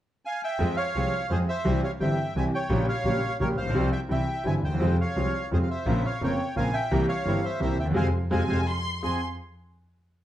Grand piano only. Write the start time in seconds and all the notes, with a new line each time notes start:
0.59 F2 F3 G#3 C4 G#4
0.95 C2 C3 F3 G#3 C4 G#4
1.30 F2 F3 G#3 C4 G#4
1.65 C2 C3 E3 G3 C4 G4
2.00 G1 G2 E3 G3 C4 G4
2.36 C2 C3 E3 G3 C4 G4
2.69 A#1 A#2 C#3 G3 A#3 G4
3.05 A#1 A#2 C#3 G3 A#3 G4
3.40 A#1 A#2 C#3 G3 A#3 G4
3.62 A1
3.66 A#1 B1
3.74 C2 C3 F3 G3 F4
4.09 C2 C3 E3 G3 E4
4.44 G1 G2 C3 E3 G3 E4
4.66 D2
4.71 D#2 E2
4.79 F2 C3 F3 G#3 F4
5.16 C2 C3 F3 G#3 F4
5.51 F2 C3 F3 G#3 F4
5.86 A#1 A#2 C#3 A#3 C4 F4
6.21 F1 F2 C#3 A#3 C4 F4
6.56 A#1 A#2 C#3 A#3 C4 F4
6.91 C2 C3 E3 A#3 C4 G4
7.25 G1 G2 E3 A#3 C4 G4
7.60 C2 C3 E3 A#3 C4 G4
7.82 D2 D#2
7.90 E2
7.94 C3 F3 G#3
8.31 C3 F3 G#3
8.48 C3 F3 G#3
9.02 F2 C4 F4 G#4